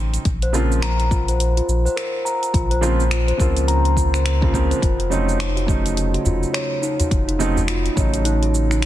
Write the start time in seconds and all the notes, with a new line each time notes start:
Already playing: A1 C#3 F#3 A3 C4 D#4
0.14 closed hi-hat, cabasa
0.25 A#1, kick, closed hi-hat, cabasa
0.42 C5, closed hi-hat
0.53 C#3 F3 A#3 C4 F4 A#4, cabasa
0.72 cabasa
0.82 A#5, finger snap, closed hi-hat, cabasa
1.00 closed hi-hat
1.11 F4, kick, cabasa
1.28 C5, closed hi-hat, cabasa
1.40 closed hi-hat, cabasa
1.57 F4, closed hi-hat
1.68 A#1, cabasa
1.85 C5, cabasa
1.96 A#4, finger snap, closed hi-hat, cabasa
2.25 A#5, cabasa
2.43 closed hi-hat, cabasa
2.53 A#1 F4, kick, closed hi-hat, cabasa
2.71 C5, closed hi-hat
2.81 C#3 F3 A#3 C4 F4, cabasa
2.99 F4, cabasa
3.11 finger snap, closed hi-hat, cabasa
3.28 C5, closed hi-hat
3.37 C#2 C#3 F3 A#3 C4 F4 A#4, kick, cabasa
3.57 closed hi-hat, cabasa
3.68 A#5, closed hi-hat, cabasa
3.85 closed hi-hat
3.97 F4, kick, cabasa
4.14 C5, finger snap, cabasa
4.26 finger snap, closed hi-hat, cabasa
4.41 C#3 F3 A#3 C4 F4, kick
4.53 C#2 C#3 F3 A#3 C4 A#4, kick, cabasa
4.71 C5, closed hi-hat, cabasa
4.82 F1 F4, kick, closed hi-hat, cabasa
5.00 closed hi-hat
5.10 C#3 F#3 A3 C4 D#4 C#5, cabasa
5.29 cabasa
5.39 D#4, finger snap, closed hi-hat, cabasa
5.56 F#4, closed hi-hat
5.66 C#3 F#3 A3 D#4, kick, cabasa
5.85 D#4, closed hi-hat, cabasa
5.97 closed hi-hat, cabasa
6.14 F#4, closed hi-hat
6.25 F1 F4, udu, cabasa
6.43 cabasa
6.54 C#5, finger snap, closed hi-hat, cabasa
6.82 D#4, cabasa
6.99 F#4, closed hi-hat, udu, cabasa
7.11 F1, kick, closed hi-hat, cabasa
7.28 D#4, closed hi-hat
7.39 C#3 F#3 A3 C4 D#4, cabasa
7.56 F#4, udu, cabasa
7.68 F4, finger snap, closed hi-hat, cabasa
7.86 closed hi-hat
7.95 A1 C#3 F#3 A3 C#5, kick, cabasa
8.00 D#4
8.14 closed hi-hat, cabasa
8.25 D#4, closed hi-hat, cabasa
8.42 F#4, closed hi-hat
8.55 cabasa
8.71 D#4, finger snap, cabasa
8.82 finger snap, closed hi-hat